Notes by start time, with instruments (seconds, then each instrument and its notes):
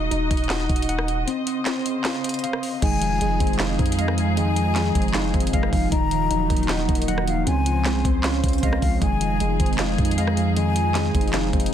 Already playing: tine electric piano D#4, string section D#4 F#4 D#5
0.11 808-style bass D#1, tine electric piano D#4, closed hi-hat
0.31 808-style bass D#1, kick, closed hi-hat
0.37 closed hi-hat
0.44 closed hi-hat
0.49 tine electric piano F#5, snare, clap, closed hi-hat
0.69 808-style bass D#1, kick, closed hi-hat
0.76 closed hi-hat
0.82 closed hi-hat
0.89 tine electric piano F#5, closed hi-hat
0.99 cross-stick
1.08 closed hi-hat
1.27 string section C#3 C5, tine electric piano C4, closed hi-hat
1.47 closed hi-hat
1.66 tine electric piano C4, snare, clap, closed hi-hat
1.86 closed hi-hat
2.04 tine electric piano F5, cross-stick, snare, clap, closed hi-hat
2.24 closed hi-hat
2.29 closed hi-hat
2.34 closed hi-hat
2.39 closed hi-hat
2.44 tine electric piano F5, closed hi-hat
2.53 cross-stick
2.63 open hi-hat
2.82 808-style bass F1, synth keys D#3, string section F3 D#4 G#4, tine electric piano G#3, flute G#5, kick, closed hi-hat, crash
3.02 synth keys F3, closed hi-hat
3.21 808-style bass F1, synth keys G#3, tine electric piano G#3, closed hi-hat
3.40 808-style bass F1, synth keys C4, kick, closed hi-hat
3.47 closed hi-hat
3.53 closed hi-hat
3.59 synth keys D#4, tine electric piano F5, snare, clap, closed hi-hat
3.79 808-style bass F2, synth keys C4, kick, closed hi-hat
3.86 closed hi-hat
3.92 closed hi-hat
3.98 synth keys G#3, flute D#5, tine electric piano F5, closed hi-hat
4.08 cross-stick
4.18 synth keys F3, flute F5, closed hi-hat
4.37 synth keys D#3, tine electric piano G#3, flute G#5, closed hi-hat
4.56 synth keys F3, closed hi-hat
4.75 synth keys G#3, tine electric piano G#3, snare, clap, closed hi-hat
4.95 808-style bass F1, synth keys C4, kick, closed hi-hat
5.02 closed hi-hat
5.08 closed hi-hat
5.14 synth keys D#4, tine electric piano F5, snare, clap, closed hi-hat
5.34 808-style bass F1, synth keys C4, kick, closed hi-hat
5.40 closed hi-hat
5.47 closed hi-hat
5.53 808-style bass F1, synth keys G#3, flute D#5, tine electric piano F5, kick, closed hi-hat
5.63 cross-stick
5.73 808-style bass F1, synth keys F3, flute F5, kick, open hi-hat
5.92 808-style bass D#1, synth keys D#3, string section D#3 D#4, tine electric piano D#4, flute A#5, kick, closed hi-hat
6.11 synth keys F3, closed hi-hat
6.31 808-style bass D#1, synth keys F#3, tine electric piano D#4, closed hi-hat
6.49 808-style bass D#1, synth keys A#3, kick, closed hi-hat
6.57 closed hi-hat
6.63 closed hi-hat
6.69 synth keys D#4, tine electric piano F#5, snare, clap, closed hi-hat
6.89 808-style bass D#1, synth keys A#3, kick, closed hi-hat
6.95 closed hi-hat
7.02 closed hi-hat
7.08 synth keys F#3, flute D#5, tine electric piano F#5, closed hi-hat
7.18 cross-stick
7.27 synth keys F3, flute F5, closed hi-hat
7.47 808-style bass C#2, synth keys C#3, string section C#3 C5, tine electric piano C4, flute G#5, closed hi-hat
7.66 synth keys F3, closed hi-hat
7.85 808-style bass C2, synth keys G#3, tine electric piano C4, snare, clap, closed hi-hat
8.05 808-style bass C#2, synth keys C4, kick, closed hi-hat
8.23 synth keys C#4, tine electric piano F5, cross-stick, snare, clap, closed hi-hat
8.43 808-style bass C#2, synth keys C4, kick, closed hi-hat
8.48 closed hi-hat
8.53 closed hi-hat
8.58 closed hi-hat
8.63 808-style bass C#2, synth keys G#3, flute D#5, tine electric piano F5, kick, closed hi-hat
8.73 cross-stick
8.82 808-style bass C#2, synth keys F3, flute F5, kick, open hi-hat
9.02 808-style bass F1, synth keys D#3, string section F3 D#4 G#4, tine electric piano G#3, flute G#5, kick, closed hi-hat
9.21 synth keys F3, closed hi-hat
9.40 808-style bass F1, synth keys G#3, tine electric piano G#3, closed hi-hat
9.60 808-style bass F1, synth keys C4, kick, closed hi-hat
9.66 closed hi-hat
9.73 closed hi-hat
9.78 synth keys D#4, tine electric piano F5, snare, clap, closed hi-hat
9.98 808-style bass F2, synth keys C4, kick, closed hi-hat
10.05 closed hi-hat
10.11 closed hi-hat
10.18 synth keys G#3, flute D#5, tine electric piano F5, closed hi-hat
10.27 cross-stick
10.37 synth keys F3, flute F5, closed hi-hat
10.56 synth keys D#3, tine electric piano G#3, flute G#5, closed hi-hat
10.76 synth keys F3, closed hi-hat
10.95 tine electric piano G#3, synth keys G#3, snare, clap, closed hi-hat
11.15 808-style bass F1, synth keys C4, kick, closed hi-hat
11.21 closed hi-hat
11.28 closed hi-hat
11.33 synth keys D#4, tine electric piano F5, snare, clap, closed hi-hat
11.53 808-style bass F1, synth keys C4, kick, closed hi-hat
11.60 closed hi-hat
11.66 closed hi-hat